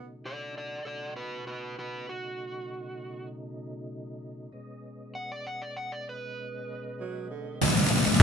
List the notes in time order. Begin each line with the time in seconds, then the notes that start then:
Already playing: B2 C#3 F#3 A3 D#4
0.25 A4 D5
0.58 A4 D5
0.85 B2 C#3 F#3 A3 D#4 A4 D5
1.16 F#4 B4
1.47 F#4 B4
1.79 F#4 B4
2.09 F#4
4.52 B2 G#3 B3 C#4 D#5
5.15 F#5
5.32 D5
5.47 F#5
5.62 D5
5.77 F#5
5.92 D5
6.09 B4
7.00 F#3
7.30 D3
7.62 F#3
7.92 G#3